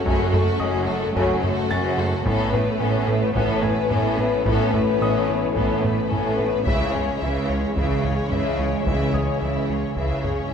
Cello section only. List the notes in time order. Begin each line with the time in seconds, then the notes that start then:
0.06 F#2
0.61 F#2
1.16 F#2
1.71 F#2
2.26 A2
2.81 A2
3.36 A2
3.91 A2
4.46 A2
5.01 A2
5.57 A2
6.11 A2
6.66 C#3
7.21 C#3
7.77 C#3
8.32 C#3
8.87 C#3
9.42 C#3
9.97 C#3